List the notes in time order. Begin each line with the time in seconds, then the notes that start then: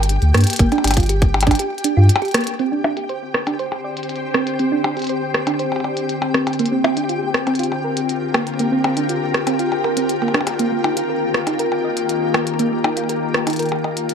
Already playing: G1 G4 G5
0.03 closed hi-hat
0.09 closed hi-hat
0.22 D2, closed hi-hat
0.34 G2 A#3, cross-stick, closed hi-hat
0.38 closed hi-hat
0.41 closed hi-hat
0.44 closed hi-hat
0.47 closed hi-hat
0.50 closed hi-hat
0.53 closed hi-hat
0.56 G1, kick, closed hi-hat
0.59 A#3, closed hi-hat
0.72 D4, closed hi-hat, percussion blips
0.78 percussion blips
0.84 G1 D4, closed hi-hat, percussion blips
0.87 closed hi-hat
0.91 closed hi-hat, percussion blips
0.94 closed hi-hat
0.97 F4, kick, closed hi-hat
1.00 closed hi-hat
1.03 closed hi-hat
1.06 closed hi-hat
1.09 G4, closed hi-hat
1.22 kick, closed hi-hat
1.34 percussion blips
1.41 closed hi-hat, percussion blips
1.47 D4, kick, closed hi-hat
1.51 closed hi-hat, percussion blips
1.55 closed hi-hat
1.59 G4, closed hi-hat
1.78 closed hi-hat
1.84 D4, closed hi-hat
1.97 G2 F4
2.09 closed hi-hat
2.16 percussion blips
2.22 G4, closed hi-hat
2.25 closed hi-hat
2.28 closed hi-hat
2.31 cross-stick, closed hi-hat
2.34 A#3, closed hi-hat
2.38 closed hi-hat
2.41 closed hi-hat
2.44 closed hi-hat
2.47 closed hi-hat
2.59 D3 C4 G4 G5, closed hi-hat
2.72 C4 D4
2.84 D4, percussion blips
2.92 C5
2.97 G4, closed hi-hat
3.09 C5, closed hi-hat
3.34 cross-stick
3.47 D4, closed hi-hat, percussion blips
3.59 C5, closed hi-hat
3.72 percussion blips
3.84 D5
3.97 closed hi-hat
4.03 closed hi-hat
4.09 closed hi-hat
4.16 closed hi-hat
4.34 C4, cross-stick
4.47 closed hi-hat
4.59 C4, closed hi-hat
4.72 D4
4.84 D4, percussion blips
4.97 G4, closed hi-hat
4.99 closed hi-hat
5.02 closed hi-hat
5.04 closed hi-hat
5.07 C5, closed hi-hat
5.09 closed hi-hat
5.34 cross-stick
5.47 D4, closed hi-hat, percussion blips
5.59 C5, closed hi-hat
5.72 percussion blips
5.76 percussion blips
5.80 percussion blips
5.84 D5, percussion blips
5.97 closed hi-hat
6.09 closed hi-hat
6.22 percussion blips
6.34 C4, cross-stick
6.47 closed hi-hat, percussion blips
6.53 closed hi-hat
6.59 A#3, closed hi-hat
6.66 closed hi-hat
6.72 C4
6.83 C4 F4, percussion blips
6.97 D4, closed hi-hat
7.09 F4, closed hi-hat
7.17 A#4
7.34 cross-stick
7.47 C4, closed hi-hat, percussion blips
7.55 closed hi-hat
7.59 F4, closed hi-hat
7.63 closed hi-hat
7.72 percussion blips
7.84 A#4
7.97 closed hi-hat
8.09 closed hi-hat
8.34 A#3, cross-stick, percussion blips
8.47 closed hi-hat
8.59 A#3, closed hi-hat
8.72 C4
8.84 C4, percussion blips
8.97 D4, closed hi-hat
9.09 F4, closed hi-hat
9.34 cross-stick
9.47 C4, closed hi-hat, percussion blips
9.59 F4, closed hi-hat
9.72 percussion blips
9.84 A#4, percussion blips
9.97 C4, closed hi-hat
10.09 closed hi-hat
10.22 A#3, percussion blips
10.28 percussion blips
10.34 D4, cross-stick, percussion blips
10.41 percussion blips
10.47 closed hi-hat, percussion blips
10.59 D#3 A#3, closed hi-hat
10.72 A#3
10.79 A#3
10.84 D#4, percussion blips
10.97 F4, closed hi-hat
11.09 A#4
11.34 cross-stick
11.47 D#4, closed hi-hat, percussion blips
11.59 A#4, closed hi-hat
11.72 percussion blips
11.84 D#5
11.97 closed hi-hat
12.09 closed hi-hat
12.34 A#3, cross-stick, percussion blips
12.47 closed hi-hat
12.59 A#3, closed hi-hat
12.72 A#3
12.84 D#4, percussion blips
12.97 F4, closed hi-hat
13.09 A#4, closed hi-hat
13.34 cross-stick
13.47 D#4, closed hi-hat, percussion blips
13.50 closed hi-hat
13.53 closed hi-hat
13.56 closed hi-hat
13.59 A#4, closed hi-hat
13.66 closed hi-hat
13.69 closed hi-hat, percussion blips
13.84 D#5, percussion blips
13.97 closed hi-hat
14.09 closed hi-hat